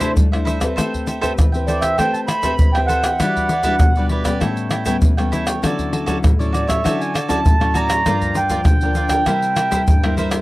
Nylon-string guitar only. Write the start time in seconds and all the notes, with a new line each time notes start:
Already playing: C3
0.01 A3 D4 E4
0.18 G3
0.34 A3 D4 E4
0.62 C4 G4 B4
0.78 A3
1.23 C4 G4 B4
1.39 E3
1.55 C4 G4 B4
2.00 A3 C4 G4 B4
2.45 C4 G4 B4
2.61 E3
2.77 C4 G4 B4
3.22 E3 G3 D4 F#4
3.66 G3 D4 F#4
3.82 B2
3.98 G3 D4 F#4
4.25 G3 B3 C#4
4.43 A2
4.87 G3 B3 C#4
5.02 E3
5.18 G3 B3 C#4
5.62 D3 F#3 C#4 E4
6.07 F#3 C#4 E4
6.23 A2
6.40 F#3 C#4 E4
6.68 F#3 C#4 E4
6.84 D3 F#3 C#4 E4
7.29 F#3 C#4 E4
7.45 A2
7.60 F#3 C#4 E4
8.07 G2 F3 A#3 D4
8.51 F3 A#3 D4
8.67 D3
8.82 F3 A#3 D4
9.27 C3 G3 A#3 E4
9.71 G3 A#3 E4
9.88 G2
10.05 G3 A#3 E4